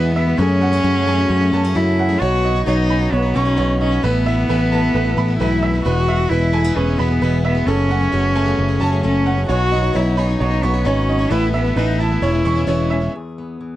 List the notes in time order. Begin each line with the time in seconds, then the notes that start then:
Already playing: E2 B2 E3 G#3 B3 E4 G#4 B4 G#5 B5
0.15 B3 E4 E5
0.26 G#3 B3 E4
0.37 F#2 C#3 F#3 A3 C#4 F#4 G#4
0.60 F#3 A3 B3 C#4 G#4 F#5
0.72 F#3 A3 C#4 G#4
0.83 F#2 C#3 F#3 A3 C#4 G#4
1.06 F#3 A3 C#4 G#4 G#5
1.17 F#3 A3 C#4 G#4
1.30 F#2
1.40 F#3 A3 C#4 G#4
1.52 F#2 F#3 A3 B3 C#4 G#4 A5
1.63 F#3 A3 C#4 G#4
1.74 F#2 C#3 F#3 A3 C#4 E4
1.99 C#4 F#5
2.09 F#3 A3 C#4 G#4
2.20 B1 B2 F#3 B3 D#4 F#4 C#5
2.43 B3 D#4 F#4 C#5 D#5
2.54 D#4 F#4 C#5
2.66 B1 F#3 B3 D#4 F#4 C#5
2.89 B3 C#4 D#4 F#4 C#5 B5
2.99 D#4 F#4 C#5
3.12 B1 B3 F#4 C#5
3.22 D#4 F#4 C#5
3.34 B1 B3 C#4 D#4 F#4 C#5 C#6
3.45 D#4 F#4 C#5
3.57 B1 C#3 B3 D#4 F#4 C#5
3.80 B2 C#4 D#5
3.90 D#4 F#4 C#5
4.03 A1 A2 B2 E3 A3 B3 E4 B4
4.25 E3 A3 B3 E4 E5
4.37 A3 B3 E4
4.49 A1 A2 E3 A3 B3 E4 B4
4.71 E3 A3 B3 E4 A5
4.82 A3 B3 E4
4.95 A1 A4 B4
5.05 A3 B3 E4
5.17 A1 E3 A3 B3 E4 B5
5.28 A3 B3 E4
5.39 B1 G#2 A2 E3 A3 B3 E4 B4
5.63 F#2 E5
5.74 A3 B3 E4
5.85 E1 E2 B2 E3 G#3 B3 E4 F#4 B4
6.07 E3 G#3 B3 E4 E5
6.20 E3 G#3 B3 E4
6.30 E1 E2 B2 E3 G#3 B3 E4 B4
6.53 E3 G#3 A3 B3 E4 G#5
6.65 E3 G#3 B3 E4
6.76 E1 C#4 G#4 B4
6.87 E3 G#3 B3 E4
6.98 E1 E3 G#3 B3 E4 B5
7.10 E3 G#3 B3 E4
7.21 E1 E2 B2 E3 G#3 B3 E4 B4
7.44 E2 B3 E5
7.55 E3 G#3 B3 E4
7.66 F#1 F#2 C#3 F#3 A3 C#4 F#4 G#4 A4
7.89 F#3 A3 C#4 G#4 F#5
8.00 F#3 A3 C#4 G#4
8.12 F#1 F#2 C#3 F#3 A3 C#4 G#4
8.34 F#3 A3 C#4 G#4 G#5
8.46 F#3 A3 C#4 G#4
8.59 F#1
8.68 F#3 A3 C#4 G#4
8.80 F#1 F#3 A3 C#4 G#4 A5
8.92 F#3 A3 C#4 G#4
9.03 F#1 F#2 C#3 F#3 A3 C#4
9.26 C#4 F#5
9.37 F#3 A3 C#4 G#4
9.47 B1 B2 F#3 B3 C#4 D#4 F#4 C#5
9.71 B3 D#4 F#4 C#5 D#5
9.82 D#4 F#4 C#5
9.94 B1 F#3 B3 D#4 E4 F#4 C#5
10.16 B3 C#4 D#4 F#4 C#5 B5
10.28 D#4 F#4 C#5
10.40 B1 D#4 F#4 C#5
10.51 D#4 F#4 C#5
10.62 B1 B3 D#4 F#4 C#5 C#6
10.74 D#4 F#4 C#5
10.85 G#1 B3 C#4 D#4 F#4 C#5
11.09 D#4 D#5
11.19 D#4 F#4 C#5
11.30 A1 A2 B2 E3 A3 B3 E4 B4
11.53 E3 A3 B3 E4 E5
11.64 A3 B3 E4
11.76 A1 A2 E3 A3 B3 D#4 E4 B4
11.99 E3 A3 B3 E4 A5
12.10 A3 B3 E4
12.21 E1 E2 B2 C#3 E3 G#3 B3 C#4 E4 C#5
12.32 E3 G#3 C#4 E4
12.44 E1 E3 G#3 C#4 E4 C#6
12.55 E3 G#3 C#4 E4
12.67 E1 E2 B2 E3 G#3 C#4 E4 C#5
12.90 C#4 E5
13.00 E3 G#3 C#4 E4
13.14 E2 G#4
13.38 B3
13.61 E3